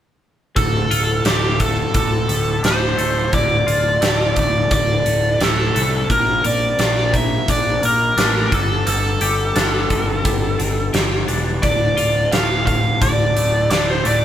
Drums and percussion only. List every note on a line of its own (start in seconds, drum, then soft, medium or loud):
0.56 kick loud
0.56 closed hi-hat medium
0.91 closed hi-hat medium
1.25 snare loud
1.25 closed hi-hat medium
1.60 kick medium
1.60 closed hi-hat medium
1.94 kick loud
1.94 closed hi-hat medium
2.29 closed hi-hat medium
2.64 snare loud
2.64 closed hi-hat medium
2.99 closed hi-hat medium
3.33 kick loud
3.33 closed hi-hat medium
3.68 closed hi-hat medium
4.02 snare loud
4.02 closed hi-hat medium
4.36 kick medium
4.36 closed hi-hat medium
4.71 kick loud
4.71 closed hi-hat medium
5.06 closed hi-hat medium
5.41 snare loud
5.41 closed hi-hat medium
5.76 closed hi-hat medium
6.10 kick loud
6.10 closed hi-hat medium
6.45 closed hi-hat medium
6.79 snare medium
6.79 closed hi-hat medium
7.14 kick medium
7.14 closed hi-hat medium
7.48 kick loud
7.48 closed hi-hat medium
7.83 closed hi-hat medium
8.18 snare loud
8.18 closed hi-hat medium
8.52 kick medium
8.52 closed hi-hat medium
8.87 closed hi-hat medium
9.21 closed hi-hat medium
9.56 snare loud
9.56 closed hi-hat medium
9.90 kick medium
9.90 closed hi-hat medium
10.25 kick loud
10.25 closed hi-hat medium
10.60 closed hi-hat medium
10.94 snare loud
10.94 closed hi-hat medium
11.28 closed hi-hat medium
11.63 kick loud
11.63 closed hi-hat medium
11.98 closed hi-hat medium
12.33 snare loud
12.33 closed hi-hat medium
12.67 kick medium
12.67 closed hi-hat medium
13.02 kick loud
13.02 closed hi-hat medium
13.37 closed hi-hat medium
13.71 snare loud
13.71 closed hi-hat medium
14.05 closed hi-hat medium